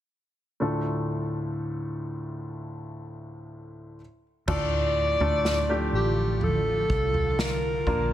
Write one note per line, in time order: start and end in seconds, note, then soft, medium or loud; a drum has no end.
0.60 3.96 D2 soft
0.60 3.96 A2 soft
0.60 3.95 A3 soft
0.60 3.95 D4 soft
0.60 3.96 F4 soft
0.60 3.96 A4 soft
4.48 5.16 D2 medium
4.48 5.89 A2 medium
4.48 8.13 D3 medium
4.48 7.84 F3 medium
4.48 5.17 A3 medium
4.48 5.17 D4 medium
4.48 5.17 F4 medium
4.48 8.13 F4 medium
4.48 5.17 A4 medium
4.48 5.90 D5 loud
4.48 kick loud
4.48 floor tom loud
4.48 crash medium
5.20 5.89 D2 medium
5.20 5.67 A3 medium
5.20 5.67 D4 medium
5.20 5.67 F4 medium
5.20 5.67 A4 medium
5.20 floor tom medium
5.45 snare medium
5.69 7.53 A3 medium
5.69 7.53 D4 medium
5.69 7.53 F4 medium
5.69 7.53 G4 medium
5.93 6.86 A1 medium
5.93 6.45 G4 medium
6.41 7.42 A4 medium
6.41 floor tom medium
6.90 7.83 C2 medium
6.90 kick loud
7.14 floor tom medium
7.39 8.12 A#4 medium
7.39 snare loud
7.87 8.13 A#1 medium
7.87 8.13 A#3 medium
7.87 8.13 D4 medium
7.87 8.13 F4 medium
7.87 8.13 A#4 medium
7.87 kick medium
7.87 floor tom medium